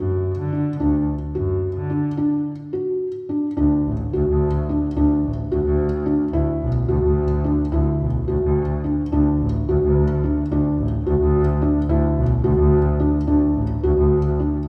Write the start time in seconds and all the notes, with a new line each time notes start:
Already playing: F#2 F#4
0.39 D3
0.53 D4
0.80 D2 D4
1.35 F#2 F#4
1.76 D3
1.90 D4
2.17 D4
2.73 F#4
3.29 D4
3.57 D2 D4
3.86 A1
4.13 D2 F#4
4.28 D2
4.69 D4
4.96 D2 D4
5.24 A1
5.51 D2 F#4
5.65 D2
6.06 D4
6.33 D2 E4
6.61 B1
6.88 D2 F#4
7.03 D2
7.44 D4
7.72 D2 E4
8.00 B1
8.28 D2 F#4
8.42 D2
8.84 D4
9.12 D2 D4
9.41 A1
9.68 D2 F#4
9.82 D2
10.24 D4
10.51 D2 D4
10.79 A1
11.06 D2 F#4
11.21 D2
11.62 D4
11.89 D2 E4
12.18 B1
12.44 D2 F#4
12.59 D2
13.00 D4
13.27 D2 D4
13.55 A1
13.83 D2 F#4
13.98 D2
14.40 D4